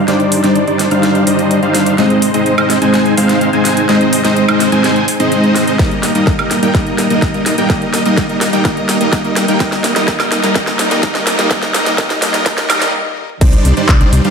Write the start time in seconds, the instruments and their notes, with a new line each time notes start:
0.08 supersaw synth G3 D4 D#4 C5 D5, snare, closed hi-hat
0.20 closed hi-hat
0.32 open hi-hat
0.44 supersaw synth G3 D4 D#4 C5 D5, snare, closed hi-hat
0.56 closed hi-hat
0.67 supersaw synth G3 D4 D#4 C5 D5, closed hi-hat
0.79 snare, open hi-hat
0.91 supersaw synth G3 D4 D#4 C5 F5, closed hi-hat
1.03 snare, closed hi-hat
1.15 closed hi-hat
1.27 supersaw synth G3 D4 D#4 C5 D#5, open hi-hat
1.39 closed hi-hat
1.51 closed hi-hat
1.63 supersaw synth G3 D4 D#4 C5 F5, closed hi-hat
1.75 snare, open hi-hat
1.86 closed hi-hat
1.98 supersaw synth G#3 C4 D#4 C5 D#5, snare, closed hi-hat
2.10 closed hi-hat
2.22 open hi-hat
2.34 supersaw synth G#3 C4 D#4 C5 D#5, closed hi-hat
2.46 closed hi-hat
2.58 supersaw synth G#3 C4 D#4 C5 D#5, closed hi-hat, high woodblock
2.70 snare, open hi-hat
2.82 supersaw synth G#3 C4 D#4 C5 G#5, closed hi-hat
2.94 snare, closed hi-hat
3.06 closed hi-hat
3.17 supersaw synth G#3 C4 D#4 C5 F5, open hi-hat
3.29 snare, closed hi-hat
3.41 closed hi-hat
3.53 supersaw synth G#3 C4 D#4 C5 G#5, closed hi-hat
3.65 snare, open hi-hat
3.77 closed hi-hat
3.89 supersaw synth G#3 C4 D#4 C5 D#5, snare, closed hi-hat
4.01 closed hi-hat
4.13 open hi-hat
4.25 supersaw synth G#3 C4 D#4 C5 D#5, snare, closed hi-hat
4.37 closed hi-hat
4.48 supersaw synth G#3 C4 D#4 C5 D#5, closed hi-hat, high woodblock
4.60 snare, open hi-hat
4.72 supersaw synth G#3 C4 D#4 C5 G#5, closed hi-hat
4.84 snare, closed hi-hat
4.96 closed hi-hat
5.08 open hi-hat
5.20 supersaw synth G#3 C4 D#4 C5 D#5, closed hi-hat
5.32 closed hi-hat
5.44 closed hi-hat
5.56 snare, open hi-hat
5.67 supersaw synth G#3 C4 D#4 C5 D#5, closed hi-hat
5.79 supersaw synth G3 A#3 D#4 A#4 D#5, kick, snare, closed hi-hat
5.91 closed hi-hat
6.03 snare, open hi-hat
6.15 supersaw synth G3 A#3 D#4 A#4 D#5, closed hi-hat
6.27 kick, snare, closed hi-hat
6.39 supersaw synth G3 A#3 D#4 A#4 D#5, closed hi-hat, high woodblock
6.51 snare, open hi-hat
6.63 supersaw synth G3 A#3 D#4 A#4 G5, closed hi-hat
6.74 supersaw synth G3 A#3 D#4 A#4 D#5, kick, snare, closed hi-hat
6.87 closed hi-hat
6.98 snare, open hi-hat
7.10 supersaw synth G3 A#3 D#4 A#4 D#5, closed hi-hat
7.22 kick, snare, closed hi-hat
7.34 supersaw synth G3 A#3 D#4 A#4 D#5, closed hi-hat
7.46 snare, open hi-hat
7.58 supersaw synth G3 A#3 D#4 A#4 G5, closed hi-hat
7.70 supersaw synth G3 A#3 D#4 A#4 D#5, kick, snare, closed hi-hat
7.82 closed hi-hat
7.94 snare, open hi-hat
8.05 supersaw synth G3 A#3 D#4 A#4 D#5, closed hi-hat
8.17 kick, snare, closed hi-hat
8.29 supersaw synth G3 A#3 D#4 A#4 D#5, closed hi-hat
8.41 snare, open hi-hat
8.53 supersaw synth G3 A#3 D#4 A#4 G5, closed hi-hat
8.65 supersaw synth G3 A#3 D#4 A#4 D#5, kick, snare, closed hi-hat
8.77 closed hi-hat
8.89 snare, open hi-hat
9.01 supersaw synth G3 A#3 D#4 A#4 D#5, closed hi-hat
9.13 kick, snare, closed hi-hat
9.25 supersaw synth G3 A#3 D#4 A#4 D#5, closed hi-hat
9.36 snare, open hi-hat
9.48 supersaw synth G3 A#3 D#4 A#4 G5, closed hi-hat
9.60 supersaw synth G3 A#3 D#4 A#4 D#5, kick, snare, closed hi-hat
9.72 snare, closed hi-hat
9.84 snare, open hi-hat
9.96 supersaw synth G3 A#3 D#4 A#4 D#5, snare, closed hi-hat
10.08 supersaw synth G3 A#3 D#4 A#4 D#5, kick, snare, closed hi-hat
10.20 snare, closed hi-hat, high woodblock
10.32 snare, open hi-hat
10.44 supersaw synth G3 A#3 D#4 A#4 D#5, snare, closed hi-hat
10.55 supersaw synth G3 A#3 D#4 A#4 D#5, kick, snare, closed hi-hat
10.67 snare, closed hi-hat
10.79 snare, open hi-hat
10.91 supersaw synth G3 A#3 D#4 A#4 D#5, snare, closed hi-hat
11.03 supersaw synth G3 A#3 D#4 A#4 D#5, kick, snare, closed hi-hat
11.15 snare, closed hi-hat
11.27 snare, open hi-hat
11.39 supersaw synth G3 A#3 D#4 A#4 D#5, snare, closed hi-hat
11.51 supersaw synth G3 A#3 D#4 A#4 D#5, kick, snare, closed hi-hat
11.63 snare, closed hi-hat
11.74 supersaw synth G3 A#3 D#4 A#4 D#5, snare, open hi-hat
11.86 snare, closed hi-hat
11.98 supersaw synth G3 A#3 D#4 A#4 D#5, kick, snare, closed hi-hat
12.10 snare, closed hi-hat
12.22 supersaw synth G3 A#3 D#4 A#4 D#5, snare, open hi-hat
12.34 snare, closed hi-hat
12.46 supersaw synth G3 A#3 D#4 A#4 D#5, kick, snare, closed hi-hat
12.58 snare, closed hi-hat
12.70 supersaw synth G3 A#3 D#4 A#4 D#5, snare, open hi-hat, high woodblock
12.82 snare, open hi-hat
12.94 high tom
13.05 high tom
13.17 mid tom
13.29 mid tom
13.41 analog synth bass C2, supersaw synth G3 D4 D#4 C5 D5, kick, closed hi-hat, crash
13.53 closed hi-hat
13.65 analog synth bass C2, open hi-hat
13.77 supersaw synth G3 D4 D#4 C5 D5, closed hi-hat
13.89 analog synth bass C2, kick, clap, closed hi-hat
14.01 supersaw synth G3 D4 D#4 C5 D5, closed hi-hat
14.13 analog synth bass C2, open hi-hat
14.25 supersaw synth G3 D4 D#4 C5 F5, closed hi-hat